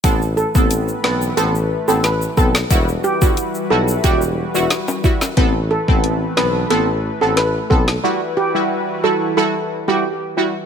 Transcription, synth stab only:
\new Staff \with { instrumentName = "Synth stab" } { \time 4/4 \key a \dorian \tempo 4 = 90 <b c' a'>16 r8 <b c' a'>8. <b c' a'>8 <b c' a'>16 r8 <b c' a'>16 r8 <b c' a'>16 r16 | <g e' fis'>16 r8 <g e' fis'>8. <g e' fis'>8 <g e' fis'>16 r8 <g e' fis'>16 r8 <g e' fis'>16 r16 | <b c' a'>16 r8 <b c' a'>8. <b c' a'>8 <b c' a'>16 r8 <b c' a'>16 r8 <b c' a'>16 r16 | <g e' fis'>16 r8 <g e' fis'>8. <g e' fis'>8 <g e' fis'>16 r8 <g e' fis'>16 r8 <g e' fis'>16 r16 | }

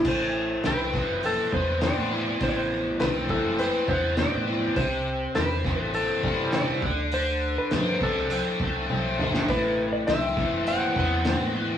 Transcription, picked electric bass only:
\new Staff \with { instrumentName = "Picked electric bass" } { \clef bass \time 4/4 \key a \dorian \tempo 4 = 102 a,,4 c,8. fis,,8 r16 e,8. a,8. | a,,4 c,8. fis,,8 r16 e,8. a,8. | c,4 e,8. a,,8 r16 g,8. c16 d,8~ | d,4 g,8. c,8 r16 c,8 b,,8 a,,8 |
a,,4 c,8. fis,,8 r16 e,8. a,8. | }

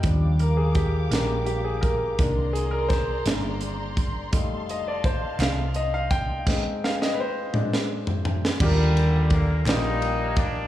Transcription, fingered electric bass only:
\new Staff \with { instrumentName = "Fingered electric bass" } { \clef bass \time 6/8 \key ees \major \tempo 4. = 56 ees,4. bes,,4. | c,4. g,,4. | f,,4. c,4. | r2. |
ees,4. bes,,4. | }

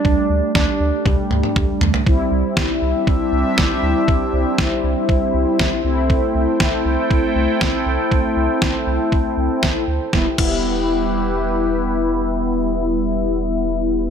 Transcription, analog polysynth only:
\new Staff \with { instrumentName = "Analog polysynth" } { \time 4/4 \key e \minor \tempo 4 = 119 <g a d'>1 | <g c' e'>1~ | <g c' e'>2.~ <g c' e'>8 <a c' e'>8~ | <a c' e'>1~ |
<a c' e'>2.~ <a c' e'>8 r8 | <g b e'>8 <g b e'>2.~ <g b e'>8~ | <g b e'>1 | }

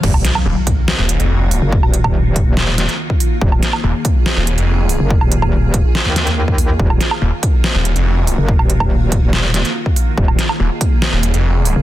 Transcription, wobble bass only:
\new Staff \with { instrumentName = "Wobble bass" } { \clef bass \time 4/4 \key ees \minor \tempo 4 = 142 ees,,8 r2. r16 ges,,16~ | ges,,16 ees,,4. ees,,4 r4 r16 | ees,,8 r2. r16 ges,,16~ | ges,,16 ees,,4. r8 ees,4.~ ees,16 |
ees,,8 r2. r16 ges,,16~ | ges,,16 ees,,4. ees,,4 r4 r16 | ees,,8 r2. r16 ges,,16 | }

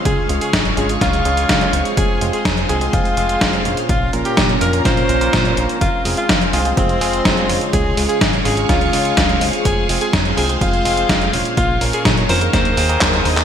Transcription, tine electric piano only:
\new Staff \with { instrumentName = "Tine electric piano" } { \time 4/4 \key f \minor \tempo 4 = 125 <des aes des' f' des''>8 <des aes des' f' aes'>8 r8 <des aes des' f' aes'>16 <des aes des' f' aes'>8. <des aes des' f' aes'>4 <aes c' f' c''>8~ | <aes c' f' c''>8 <aes c' f' aes'>8 r8 <aes c' f' aes'>16 <aes c' f' aes'>8. <aes c' f' aes'>4 <bes, bes des' f' des''>8~ | <bes, bes des' f' des''>8 <bes, bes des' f' bes'>8 r8 <bes, bes des' f' bes'>16 <bes, bes des' f' bes'>8. <bes, bes des' f' bes'>16 <bes, bes des' f' bes'>8. <bes des' f' c''>8 | r8 <aes c' f' aes'>8 r8 <aes c' f' aes'>16 <aes c' f' aes'>8. <aes c' f' aes'>4 <des aes des' f' des''>8~ |
<des aes des' f' des''>8 <des aes des' f' aes'>8 r8 <des aes des' f' aes'>16 <des aes des' f' aes'>8. <des aes des' f' aes'>4 <aes c' f' c''>8~ | <aes c' f' c''>8 <aes c' f' aes'>8 r8 <aes c' f' aes'>16 <aes c' f' aes'>8. <aes c' f' aes'>4 <bes, bes des' f' des''>8~ | <bes, bes des' f' des''>8 <bes, bes des' f' bes'>8 r8 <ees bes des' f' bes'>16 <ees bes ees' aes' bes'>8. <ees bes ees' aes' bes'>16 <ees bes ees' aes' bes'>8. <bes ees' aes' c''>8 | }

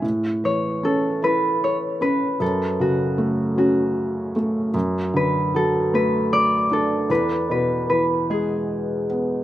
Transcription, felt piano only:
\new Staff \with { instrumentName = "Felt piano" } { \clef bass \time 6/8 \key a \major \tempo 4. = 51 a,8 e8 cis'8 e'4 cis'8 | fis,8 cis8 a8 cis'4 a8 | fis,8 d8 fis8 a4 d'8 | e,8 b,8 e8 gis4 b8 | }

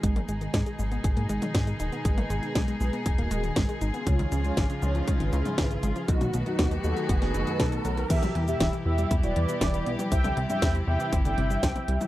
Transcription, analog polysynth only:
\new Staff \with { instrumentName = "Analog polysynth" } { \time 4/4 \key aes \dorian \tempo 4 = 119 <ces' aes'>8 r16 aes'8 r16 <ces' aes'>8 r16 ges'4. r16 | <aes' ces''>8 r16 <aes' ces''>8 r16 <aes' ces''>8 r16 <ges' bes'>4. r16 | <f' des''>8 r16 <f' des''>8 r16 <f' des''>8 r16 <aes' ces''>4. r16 | <dis' fis'>8 r16 <dis' fis'>8 r16 <fis' a'>8 r16 <dis' b'>4. r16 |
\key e \minor <g' e''>8 r16 <g' e''>8 r16 <g' e''>8 r16 <b' d''>4. r16 | <e'' g''>8 r16 <e'' g''>8 r16 <e'' g''>8 r16 <e'' g''>4. r16 | }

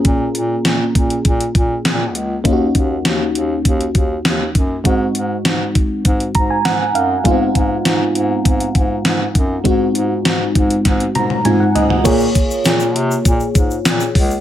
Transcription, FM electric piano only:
\new Staff \with { instrumentName = "FM electric piano" } { \time 4/4 \key bes \minor \tempo 4 = 100 << { r1 | r1 | r2 r8 bes''16 aes''16 ges''8 f''8 | r1 |
r2 r8 bes''8 aes''16 ges''16 ees''8 | r1 | } \\ { <bes des' f' aes'>2.~ <bes des' f' aes'>8 r8 | <bes des' ees' f' ges'>1 | <aes c' ees' ges'>1 | <aes ces' c' ees' f'>1 |
<aes c' ees' ges'>2. <aes c' ees' f'>4 | <bes f' aes' des''>1 | } >> }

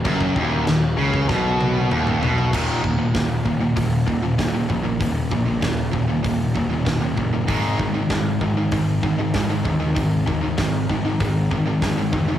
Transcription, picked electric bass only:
\new Staff \with { instrumentName = "Picked electric bass" } { \clef bass \time 4/4 \key ees \minor \tempo 4 = 97 ges,,8 ees,,8 ees,,8 des,8 ces,4 ees,,8 ces,8 | ees,,8 ees,,8 ees,,8 ees,,8 ees,,8 ees,,8 ees,,8 bes,,8 | ees,,8 bes,,8 ees,,8 ees,,8 ees,,8 ees,,8 ees,,8 ges,,8 | aes,,8 aes,,8 aes,,8 aes,,8 aes,,8 aes,,8 aes,,8 ees,8 |
aes,,8 ees,8 aes,,8 aes,,8 aes,,8 aes,,8 aes,,8 f,,8 | }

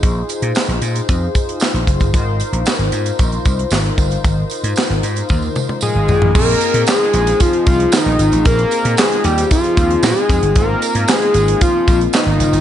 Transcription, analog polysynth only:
\new Staff \with { instrumentName = "Analog polysynth" } { \time 4/4 \key aes \lydian \tempo 4 = 114 << { r1 | r1 | r2. <bes' ees''>16 <c'' f''>16 <d'' g''>16 <ees'' aes''>16~ | <ees'' aes''>16 r2. r8. |
r1 | r1 | } \\ { <ees' f' aes' c''>1 | <ees' f' bes' c''>1~ | <ees' f' bes' c''>1 | <c' ees' f' aes'>1~ |
<c' ees' f' aes'>1 | <bes c' ees' f'>1 | } >> }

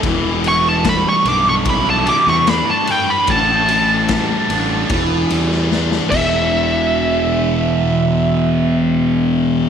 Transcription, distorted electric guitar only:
\new Staff \with { instrumentName = "Distorted electric guitar" } { \clef bass \time 4/4 \key e \minor \tempo 4 = 74 e4 g8 d'8 e'8 g8 d'8 b'8 | a,4 g8 d'8 e8 g8 d'8 <e, b, e>8~ | <e, b, e>1 | }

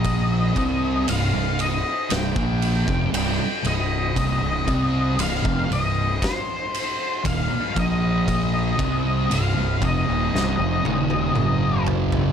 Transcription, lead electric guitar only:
\new Staff \with { instrumentName = "Lead electric guitar" } { \time 4/4 \key c \minor \tempo 4 = 58 ees''4 f''8 ees''8 g''4 g''8 ees''8~ | ees''4 f''8 ees''8 c''4 f''8 ees''8~ | ees''4 f''8 ees''2 r8 | }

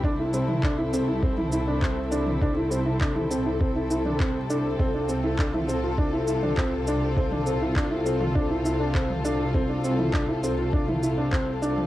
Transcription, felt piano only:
\new Staff \with { instrumentName = "Felt piano" } { \time 4/4 \key f \lydian \tempo 4 = 101 d'16 e'16 c'16 e'16 d'16 e'16 c'16 e'16 c'16 e'16 e'16 d'16 c'8 d'8 | d'16 e'16 c'16 e'16 d'16 e'16 c'16 e'16 c'16 e'16 e'16 d'16 c'8 d'8 | c'16 d'16 c'16 e'16 d'16 e'16 c'16 f'16 d'16 e'16 e'16 d'16 c'8 d'8 | c'16 d'16 c'16 e'16 d'16 e'16 c'16 f'16 d'16 e'16 e'16 d'16 c'8 d'8 |
c'16 d'16 c'16 e'16 d'16 e'16 c'16 f'16 d'16 e'16 e'16 d'16 c'8 d'8 | }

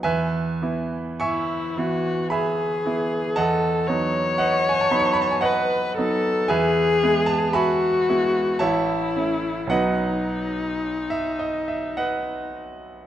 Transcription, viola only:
\new Staff \with { instrumentName = "Viola" } { \time 3/4 \key e \major \tempo 4 = 56 r4 e'8 fis'8 gis'4 | a'8 cis''4. b'8 a'8 | gis'4 fis'4 e'4 | dis'2~ dis'8 r8 | }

